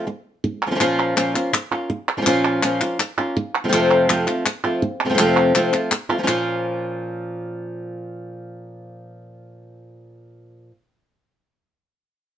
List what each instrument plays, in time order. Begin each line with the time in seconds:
0.07 muted nylon-string guitar stroke
0.44 muted nylon-string guitar stroke
0.67 nylon-string guitar F3 A#3 C#4 F4
0.71 nylon-string guitar F3 A#3 C#4 F4
0.75 nylon-string guitar F3 A#3 C#4 F4
0.80 nylon-string guitar A#2 F3 A#3 C#4 F4, clap
1.16 nylon-string guitar A#2 F3 A#3 C#4 F4, clap
1.34 nylon-string guitar A#3 C#4 F4, clap
1.53 muted nylon-string guitar stroke, clap
1.71 nylon-string guitar A#3 C#4 F4, clap
1.90 muted nylon-string guitar stroke
2.17 nylon-string guitar F3 A#3 C#4 F4
2.22 nylon-string guitar F3 A#3 C#4 F4
2.26 nylon-string guitar A#2 F3 A#3 C#4 F4, clap
2.63 nylon-string guitar A#2 F3 A#3 C#4 F4, clap
2.81 nylon-string guitar A#3 C#4 F4, clap
2.99 muted nylon-string guitar stroke, clap
3.18 nylon-string guitar A#3 C#4 F4
3.37 muted nylon-string guitar stroke
3.64 nylon-string guitar C3 F3 A3 C4 F4
3.68 nylon-string guitar C3 F3 A3 C4 F4
3.73 nylon-string guitar F2 C3 F3 A3 C4 F4, clap
4.09 nylon-string guitar F2 C3 F3 A3 C4 F4, clap
4.27 nylon-string guitar F3 A3 C4 F4, clap
4.46 muted nylon-string guitar stroke, clap
4.64 nylon-string guitar F3 A3 C4 F4, clap
4.82 muted nylon-string guitar stroke
5.05 nylon-string guitar C3 F3 A3 C4 F4
5.09 nylon-string guitar C3 F3 A3 C4 F4
5.14 nylon-string guitar C3 F3 A3 C4 F4
5.18 nylon-string guitar F2 C3 F3 A3 C4 F4, clap
5.55 nylon-string guitar F2 C3 F3 A3 C4 F4, clap
5.73 nylon-string guitar F3 A3 C4 F4, clap
5.91 muted nylon-string guitar stroke, clap
6.09 nylon-string guitar F3 A3 C4 F4
6.18 nylon-string guitar F3 A#3 C#4 F4
6.23 nylon-string guitar F3 A#3 C#4 F4
6.27 nylon-string guitar A#2 F3 A#3 C#4 F4, clap